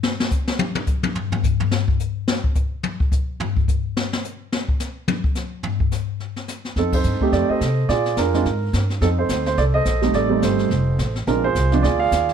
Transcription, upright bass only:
X:1
M:4/4
L:1/8
Q:"Swing" 1/4=214
K:Fmix
V:1 name="Upright bass" clef=bass
z8 | z8 | z8 | z8 |
z8 | z8 | F,,2 G,, z F,, z C,2 | B,,2 F,,2 _A,,2 G,,2 |
F,,2 D,,2 C,,2 B,,,2 | A,,,2 G,,,2 F,,,2 A,,,2 | B,,,2 C,,2 D,,2 E,,2 |]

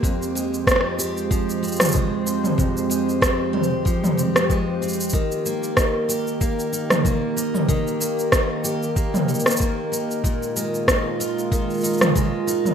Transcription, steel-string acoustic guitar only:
X:1
M:4/4
L:1/8
Q:"Swing 16ths" 1/4=94
K:Eb
V:1 name="Steel-string acoustic guitar"
F,, A, C G F, C A, C | F,, A, C G F, C A, C | E, B, E G B, E B, E | E, B, E G B, E B, E |
B,, A, E F E, E A, E |]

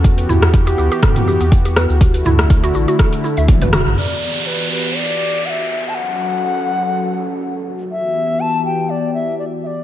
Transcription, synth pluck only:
X:1
M:4/4
L:1/16
Q:"Swing 16ths" 1/4=122
K:Edor
V:1 name="Synth pluck"
z2 E E z G G G A z G B, z G B z | z2 E E z F F F A z E e z B F z | z16 | z16 |
z16 |]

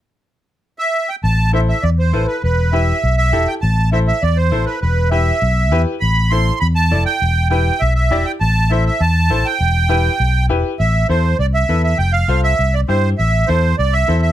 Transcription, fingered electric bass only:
X:1
M:4/4
L:1/8
Q:1/4=201
K:Am
V:1 name="Fingered electric bass" clef=bass
z8 | A,,,4 E,,2 A,,, z | E,,,4 B,,,2 E,,, z | A,,,4 E,,2 A,,, z |
E,,,4 B,,,2 E,, z | A,,,4 E,,2 F,,, z | E,,,4 B,,,2 E,,, z | A,,,4 E,,2 A,,, z |
E,,,4 B,,,2 E,,, z | A,,,2 E,,2 C,,2 E,,2 | F,,,2 C,,2 C,,2 G,,2 | A,,,2 E,,2 C,,2 E,,2 |]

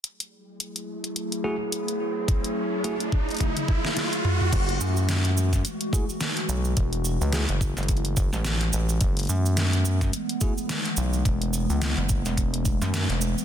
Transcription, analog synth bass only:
X:1
M:4/4
L:1/16
Q:"Swing 16ths" 1/4=107
K:F#m
V:1 name="Analog synth bass" clef=bass
z16 | z16 | F,,,2 F,,6 z6 B,,,2 | E,,,3 C,,2 F,,,2 F,,,3 F,,, A,,,3 A,,,2 |
F,,,2 F,,6 z6 B,,,2 | E,,,3 C,,2 F,,,2 E,,,4 F,,2 E,,,2 z |]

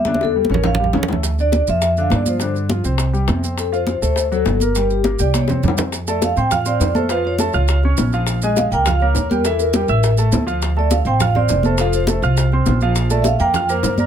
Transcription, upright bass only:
X:1
M:4/4
L:1/8
Q:1/4=205
K:F
V:1 name="Upright bass" clef=bass
E,,3 A,,,3 D,,2- | D,,3 F,,3 G,,2- | G,,3 C,,3 F,,2- | F,,3 D,,3 G,,,2- |
G,,,3 C,,3 F,,2- | F,,3 A,,3 F,,2- | F,,3 ^C,,3 B,,,2- | B,,,3 _D,,3 E,,2- |
E,,3 A,,,3 D,,2- | D,,3 A,,,3 F,,,2- | F,,,3 C,,3 B,,,2- | B,,,3 F,,3 G,,2 |]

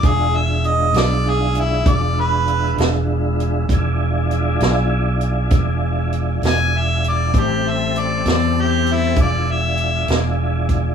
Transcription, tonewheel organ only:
X:1
M:12/8
L:1/8
Q:3/8=66
K:Ephr
V:1 name="Tonewheel organ"
[D,F,^G,E]12 | [F,DE^G]12 | [G,CEA]6 [F,DE^G]6 |]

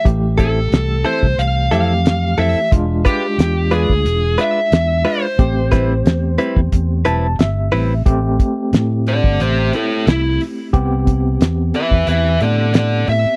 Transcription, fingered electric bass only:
X:1
M:4/4
L:1/16
Q:1/4=90
K:Am
V:1 name="Fingered electric bass" clef=bass
A,,,4 C,,2 z C,, C,,2 F,,4 F,, z | E,,,2 z2 E,,3 D,, E,,,2 z2 E,,2 z2 | A,,,4 E,,2 z E,, E,,2 E,,,2 G,,,2 A,,,2 | A,,,2 z2 A,,3 G,,, A,,,2 z2 C,,2 z2 |
C,,4 E,,2 z E,, E,,2 A,,4 A,, z |]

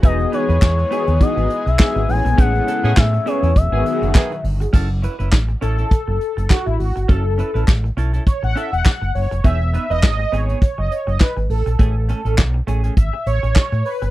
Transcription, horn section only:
X:1
M:4/4
L:1/16
Q:"Swing 16ths" 1/4=102
K:F#dor
V:1 name="Horn section"
z16 | z3 [E,CG] z4 z [D,B,G] z2 [D,B,G]2 z2 | z16 | z16 |
z16 | z16 |]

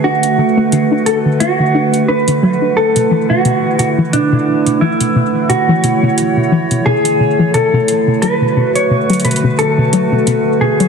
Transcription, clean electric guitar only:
X:1
M:4/4
L:1/16
Q:"Swing 16ths" 1/4=88
K:Emix
V:1 name="Clean electric guitar"
F6 A2 F4 B4 | A3 F3 F2 D4 E4 | F8 G4 A4 | B3 c3 B2 A6 G2 |]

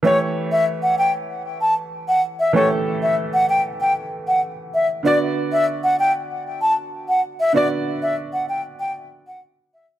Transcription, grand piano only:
X:1
M:4/4
L:1/8
Q:1/4=96
K:Amix
V:1 name="Grand piano"
[E,A,Gc]8 | [E,A,GA]8 | [D,B,Fd]8 | [D,B,Fd]8 |]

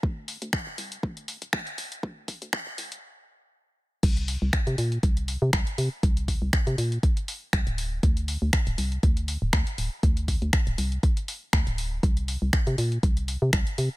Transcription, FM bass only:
X:1
M:4/4
L:1/16
Q:"Swing 16ths" 1/4=120
K:Dphr
V:1 name="FM bass" clef=bass
D,,3 D,, z D,,, C,,2 D,,3 D,,, D,, z D,,, z | D,,3 D,, z D,,, C,,2 z8 | C,,3 C,, z C, B,,2 C,,3 C, C,, z C, z | C,,3 C,, z C, B,,2 z4 C,, D,,,3 |
D,,3 D,, z D,,, C,,2 D,,3 D,,, D,, z D,,, z | D,,3 D,, z D,,, C,,2 z4 D,, D,,,3 | C,,3 C,, z C, B,,2 C,,3 C, C,, z C, z |]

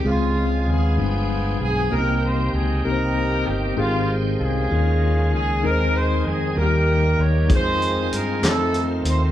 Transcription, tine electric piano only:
X:1
M:6/8
L:1/8
Q:3/8=64
K:Ab
V:1 name="Tine electric piano"
[A,CFA]2 z [G,A,=B,=DF]2 z | [B,CDEGB]2 z [B,CEGBc]2 z | [A,CEGA]2 z [B,DEFA]2 z | [A,CEABc]2 z [G,B,EFGB]2 z |
[A,CEFA]2 z [=A,CEF=A]2 z |]
V:2 name="Tine electric piano" clef=bass
D,3 G,,3 | C,3 z3 | A,,3 E,3 | E,3 E,3 |
z6 |]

